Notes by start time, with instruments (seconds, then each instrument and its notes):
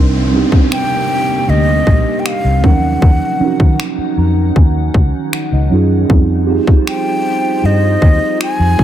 Already playing: fingered electric bass C2, ambient pad C3 A#3 C4 G4, synth keys G3 C4 D4 D#4, downlifter
0.00 synth keys A#4
0.31 synth keys G3 C4 D4 D#4
0.36 synth keys G4
0.52 muted fingered electric bass stroke, kick
0.72 flute G5, finger snap
1.48 fingered electric bass D2, flute D#5
1.87 fingered electric bass A#1, kick
2.19 flute G5
2.26 flute F5, finger snap
2.44 fingered electric bass C2
2.62 fingered electric bass D#2, ambient pad D#3 C#4 D#4 F#5, synth keys F3 F#3 C#4 D#4, flute F#5, kick
2.67 synth keys A#4
3.02 fingered electric bass D#2, kick
3.39 synth keys F3 C#4 D#4, muted fingered electric bass stroke
3.44 synth keys F#4 A#4
3.60 fingered electric bass D#3, kick
3.80 finger snap
3.98 muted fingered electric bass stroke
4.17 fingered electric bass F2, synth keys A#5
4.56 fingered electric bass D#2, synth keys G#5, kick
4.94 fingered electric bass C#2, synth keys F#5, kick
5.33 synth keys F#5, finger snap
5.52 fingered electric bass C#2, synth keys D#5
5.70 fingered electric bass F#2, synth keys F#3 C#4 D#4 F4
5.75 synth keys G#4
6.08 fingered electric bass F2, ambient pad F3 D#4 F4 C5, synth keys G3 C4 D#4 F4, kick
6.13 synth keys G#4
6.47 synth keys C4 D#4 F4 G4
6.51 synth keys G#4
6.67 muted fingered electric bass stroke, kick
6.87 flute G5, finger snap
7.63 fingered electric bass G2, flute D#5
8.02 fingered electric bass D#2, kick
8.41 flute G#5, finger snap
8.59 fingered electric bass F2
8.78 fingered electric bass D#2, synth keys G3 C4 D#4, kick